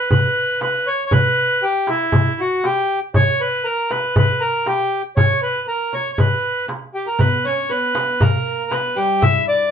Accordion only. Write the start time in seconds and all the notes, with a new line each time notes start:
0.11 B4
0.62 B4
0.87 C#5
1.06 C#5
1.12 B4
1.63 G4
1.89 E4
2.40 F#4
2.65 G4
3.15 C#5
3.41 B4
3.64 A#4
3.90 B4
4.17 B4
4.41 A#4
4.67 G4
5.17 C#5
5.43 B4
5.68 A#4
5.94 C#5
6.13 C#5
6.19 B4
6.95 G4
7.07 A#4
7.19 B4
7.45 C#5
7.70 B4
8.21 A#4
8.71 B4
8.97 G4
9.22 E5
9.48 D5